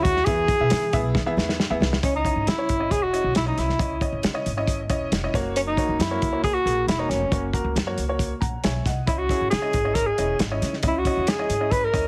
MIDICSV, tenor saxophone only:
0, 0, Header, 1, 2, 480
1, 0, Start_track
1, 0, Tempo, 440205
1, 295, Time_signature, 4, 2, 24, 8
1, 13169, End_track
2, 0, Start_track
2, 0, Title_t, "Tenor saxophone"
2, 0, Program_c, 0, 66
2, 32, Note_on_c, 0, 66, 107
2, 276, Note_on_c, 0, 68, 127
2, 292, Note_off_c, 0, 66, 0
2, 1245, Note_off_c, 0, 68, 0
2, 2229, Note_on_c, 0, 61, 89
2, 2334, Note_off_c, 0, 61, 0
2, 2355, Note_on_c, 0, 63, 84
2, 2705, Note_on_c, 0, 64, 89
2, 2722, Note_off_c, 0, 63, 0
2, 3176, Note_on_c, 0, 68, 102
2, 3192, Note_off_c, 0, 64, 0
2, 3303, Note_on_c, 0, 66, 97
2, 3319, Note_off_c, 0, 68, 0
2, 3660, Note_off_c, 0, 66, 0
2, 3671, Note_on_c, 0, 64, 86
2, 3776, Note_off_c, 0, 64, 0
2, 3785, Note_on_c, 0, 63, 80
2, 3916, Note_on_c, 0, 64, 82
2, 3932, Note_off_c, 0, 63, 0
2, 4387, Note_off_c, 0, 64, 0
2, 6069, Note_on_c, 0, 61, 90
2, 6121, Note_off_c, 0, 61, 0
2, 6186, Note_on_c, 0, 63, 94
2, 6549, Note_on_c, 0, 64, 91
2, 6565, Note_off_c, 0, 63, 0
2, 7018, Note_off_c, 0, 64, 0
2, 7025, Note_on_c, 0, 68, 107
2, 7134, Note_on_c, 0, 66, 107
2, 7150, Note_off_c, 0, 68, 0
2, 7496, Note_off_c, 0, 66, 0
2, 7501, Note_on_c, 0, 64, 79
2, 7622, Note_on_c, 0, 63, 81
2, 7638, Note_off_c, 0, 64, 0
2, 7743, Note_on_c, 0, 61, 82
2, 7759, Note_off_c, 0, 63, 0
2, 8221, Note_off_c, 0, 61, 0
2, 9892, Note_on_c, 0, 64, 89
2, 10012, Note_on_c, 0, 66, 86
2, 10028, Note_off_c, 0, 64, 0
2, 10358, Note_off_c, 0, 66, 0
2, 10364, Note_on_c, 0, 68, 96
2, 10848, Note_on_c, 0, 70, 101
2, 10865, Note_off_c, 0, 68, 0
2, 10972, Note_on_c, 0, 68, 84
2, 10988, Note_off_c, 0, 70, 0
2, 11333, Note_off_c, 0, 68, 0
2, 11856, Note_on_c, 0, 64, 89
2, 11972, Note_on_c, 0, 66, 86
2, 11989, Note_off_c, 0, 64, 0
2, 12312, Note_on_c, 0, 68, 90
2, 12328, Note_off_c, 0, 66, 0
2, 12774, Note_on_c, 0, 71, 108
2, 12791, Note_off_c, 0, 68, 0
2, 12915, Note_on_c, 0, 70, 95
2, 12931, Note_off_c, 0, 71, 0
2, 13169, Note_off_c, 0, 70, 0
2, 13169, End_track
0, 0, End_of_file